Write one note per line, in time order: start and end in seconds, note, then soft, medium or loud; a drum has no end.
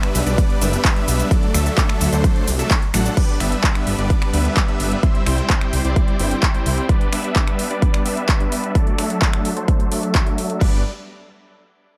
0.00 0.24 G3 medium
0.00 0.24 B3 medium
0.00 0.24 D4 medium
0.00 0.24 B4 medium
0.00 0.24 E5 loud
0.00 finger snap medium
0.00 closed hi-hat soft
0.15 0.22 B1 medium
0.15 open hi-hat loud
0.15 ride medium
0.15 cabasa medium
0.26 0.41 B1 medium
0.26 0.59 G3 medium
0.26 0.59 B3 medium
0.26 0.59 D4 medium
0.26 0.59 B4 medium
0.26 0.59 D5 loud
0.26 closed hi-hat medium
0.26 cabasa soft
0.38 kick loud
0.38 closed hi-hat medium
0.38 ride medium
0.38 cabasa soft
0.50 closed hi-hat soft
0.61 0.76 F#1 loud
0.61 0.94 G3 medium
0.61 0.94 B3 medium
0.61 0.93 D4 medium
0.61 0.93 B4 medium
0.61 0.93 E5 loud
0.61 open hi-hat loud
0.61 ride medium
0.61 cabasa medium
0.73 closed hi-hat medium
0.73 cabasa soft
0.85 kick loud
0.85 clap loud
0.85 closed hi-hat medium
0.85 ride medium
0.85 cabasa soft
0.96 1.28 G3 loud
0.96 1.28 B3 medium
0.96 1.28 D4 medium
0.96 1.28 B4 medium
0.96 1.28 E5 loud
0.96 closed hi-hat soft
1.08 1.23 B1 loud
1.08 open hi-hat loud
1.08 ride medium
1.08 cabasa medium
1.20 closed hi-hat medium
1.20 cabasa soft
1.31 kick loud
1.31 closed hi-hat medium
1.31 ride medium
1.31 cabasa soft
1.43 closed hi-hat soft
1.54 1.69 D2 loud
1.54 2.10 F#3 medium
1.54 2.10 A3 medium
1.54 2.10 D4 medium
1.54 2.10 A4 medium
1.54 2.10 E5 loud
1.54 finger snap medium
1.54 open hi-hat loud
1.54 ride medium
1.54 cabasa medium
1.66 closed hi-hat medium
1.66 cabasa soft
1.78 kick loud
1.78 clap loud
1.78 closed hi-hat medium
1.78 ride medium
1.78 cabasa soft
1.89 finger snap medium
1.89 closed hi-hat soft
2.01 2.08 D2 medium
2.01 open hi-hat loud
2.01 ride medium
2.01 cabasa medium
2.12 2.27 D2 medium
2.12 2.45 F#3 medium
2.12 2.45 A3 medium
2.12 2.45 D4 medium
2.12 2.45 A4 medium
2.12 2.45 C5 loud
2.12 closed hi-hat medium
2.12 cabasa soft
2.24 kick loud
2.24 closed hi-hat medium
2.24 ride medium
2.24 cabasa soft
2.36 closed hi-hat soft
2.47 2.62 C2 loud
2.47 open hi-hat loud
2.47 ride medium
2.47 cabasa medium
2.59 2.71 F#3 loud
2.59 2.71 A3 medium
2.59 2.71 D4 medium
2.59 2.71 A4 medium
2.59 2.71 E5 loud
2.59 closed hi-hat medium
2.59 cabasa soft
2.71 kick loud
2.71 clap loud
2.71 closed hi-hat medium
2.71 ride medium
2.71 cabasa soft
2.82 closed hi-hat soft
2.94 3.09 A1 medium
2.94 3.14 F#3 medium
2.94 3.14 A3 medium
2.94 3.14 D4 medium
2.94 3.14 A4 medium
2.94 3.14 F#5 loud
2.94 finger snap medium
2.94 open hi-hat loud
2.94 ride medium
2.94 cabasa medium
3.06 closed hi-hat medium
3.06 cabasa soft
3.17 3.37 G3 medium
3.17 3.37 B3 medium
3.17 3.37 D4 medium
3.17 3.37 B4 medium
3.17 3.37 D5 loud
3.17 kick loud
3.17 closed hi-hat medium
3.17 crash loud
3.29 closed hi-hat soft
3.40 3.55 G1 loud
3.40 3.96 G3 medium
3.40 3.96 B3 medium
3.40 3.96 D4 medium
3.40 3.96 B4 medium
3.40 3.96 E5 loud
3.40 finger snap medium
3.40 open hi-hat loud
3.52 closed hi-hat medium
3.64 kick loud
3.64 clap loud
3.64 closed hi-hat medium
3.75 finger snap medium
3.75 closed hi-hat soft
3.87 3.94 G1 medium
3.87 open hi-hat loud
3.99 4.13 G1 medium
3.99 4.31 G3 medium
3.99 4.31 B3 medium
3.99 4.31 D4 medium
3.99 4.31 B4 medium
3.99 4.31 D5 loud
3.99 closed hi-hat medium
4.10 kick loud
4.10 closed hi-hat medium
4.22 finger snap medium
4.22 closed hi-hat soft
4.33 4.48 D2 loud
4.33 4.65 G3 medium
4.33 4.65 B3 medium
4.33 4.65 D4 medium
4.33 4.66 B4 medium
4.33 4.66 E5 loud
4.33 open hi-hat loud
4.45 closed hi-hat medium
4.57 kick loud
4.57 clap loud
4.57 closed hi-hat medium
4.68 5.00 G3 loud
4.68 5.00 B3 medium
4.68 5.00 D4 medium
4.68 5.00 B4 medium
4.68 5.00 E5 loud
4.68 closed hi-hat soft
4.80 4.95 G1 loud
4.80 open hi-hat loud
4.92 closed hi-hat medium
5.03 5.23 G3 medium
5.03 5.23 C4 medium
5.03 5.23 E4 medium
5.03 5.23 C5 medium
5.03 5.23 E5 loud
5.03 kick loud
5.03 closed hi-hat medium
5.15 closed hi-hat soft
5.26 5.41 C2 loud
5.26 5.82 G3 medium
5.26 5.82 C4 medium
5.26 5.82 E4 medium
5.26 5.82 C5 medium
5.26 5.82 G5 loud
5.26 finger snap medium
5.26 open hi-hat loud
5.38 closed hi-hat medium
5.50 kick loud
5.50 clap loud
5.50 closed hi-hat medium
5.61 finger snap medium
5.61 closed hi-hat soft
5.73 5.80 C2 medium
5.73 open hi-hat loud
5.84 6.00 C2 medium
5.84 6.17 G3 medium
5.84 6.17 C4 medium
5.84 6.17 E4 medium
5.84 6.17 C5 medium
5.84 6.17 D5 loud
5.84 closed hi-hat medium
5.96 kick loud
5.96 closed hi-hat medium
6.08 closed hi-hat soft
6.19 6.34 G1 loud
6.19 6.52 G3 medium
6.19 6.52 C4 medium
6.19 6.52 E4 medium
6.19 6.52 C5 medium
6.19 6.52 G5 loud
6.19 open hi-hat loud
6.31 closed hi-hat medium
6.43 kick loud
6.43 clap loud
6.43 closed hi-hat medium
6.54 6.86 G3 medium
6.54 6.86 C4 medium
6.54 6.86 E4 medium
6.54 6.86 C5 medium
6.54 6.86 G5 loud
6.54 closed hi-hat soft
6.66 6.81 C2 loud
6.66 open hi-hat loud
6.78 closed hi-hat medium
6.89 7.09 G3 medium
6.89 7.09 B3 medium
6.89 7.09 D4 medium
6.89 7.09 B4 medium
6.89 7.09 D5 loud
6.89 kick loud
6.89 closed hi-hat soft
7.01 closed hi-hat soft
7.12 7.68 G3 medium
7.12 7.68 B3 medium
7.12 7.68 D4 medium
7.12 7.68 B4 medium
7.12 7.68 E5 loud
7.12 finger snap medium
7.12 open hi-hat loud
7.24 closed hi-hat medium
7.36 kick loud
7.36 clap loud
7.36 closed hi-hat soft
7.47 finger snap medium
7.47 closed hi-hat soft
7.59 open hi-hat loud
7.71 8.03 G3 medium
7.71 8.03 B3 medium
7.71 8.03 D4 medium
7.71 8.03 B4 medium
7.71 8.03 D5 loud
7.71 closed hi-hat soft
7.82 kick loud
7.82 closed hi-hat medium
7.94 finger snap medium
7.94 closed hi-hat soft
8.05 8.38 G3 medium
8.05 8.38 B3 medium
8.05 8.38 D4 medium
8.05 8.38 B4 medium
8.05 8.38 E5 loud
8.05 open hi-hat loud
8.17 closed hi-hat soft
8.29 kick loud
8.29 clap loud
8.29 closed hi-hat medium
8.40 8.72 G3 loud
8.40 8.72 B3 medium
8.40 8.72 D4 medium
8.40 8.72 B4 medium
8.40 8.72 E5 loud
8.40 closed hi-hat soft
8.52 open hi-hat loud
8.64 closed hi-hat soft
8.75 8.95 F#3 medium
8.75 8.95 A3 medium
8.75 8.95 D4 medium
8.75 8.95 D5 loud
8.75 kick loud
8.75 closed hi-hat soft
8.87 closed hi-hat soft
8.98 9.54 F#3 medium
8.98 9.54 A3 medium
8.98 9.54 D4 medium
8.98 9.54 A4 medium
8.98 9.54 E5 loud
8.98 finger snap medium
8.98 open hi-hat loud
9.10 closed hi-hat medium
9.22 kick loud
9.22 clap loud
9.22 closed hi-hat soft
9.33 finger snap medium
9.33 closed hi-hat soft
9.45 open hi-hat loud
9.57 9.89 F#3 medium
9.57 9.89 A3 medium
9.57 9.89 D4 medium
9.57 9.89 A4 medium
9.57 9.89 C5 loud
9.57 closed hi-hat soft
9.68 kick loud
9.68 closed hi-hat medium
9.80 closed hi-hat soft
9.91 10.24 F#3 medium
9.91 10.24 A3 medium
9.91 10.24 D4 medium
9.91 10.24 A4 medium
9.91 10.24 E5 loud
9.91 open hi-hat loud
10.03 closed hi-hat soft
10.15 kick loud
10.15 clap loud
10.15 closed hi-hat medium
10.26 10.58 F#3 loud
10.26 10.58 A3 medium
10.26 10.58 D4 medium
10.26 10.58 A4 medium
10.26 10.58 E5 loud
10.26 closed hi-hat soft
10.38 open hi-hat loud
10.50 closed hi-hat medium
10.61 10.83 G1 loud
10.61 10.79 G3 medium
10.61 10.79 B3 medium
10.61 10.79 D4 medium
10.61 10.79 B4 medium
10.61 10.79 D5 medium
10.61 kick loud
10.61 crash medium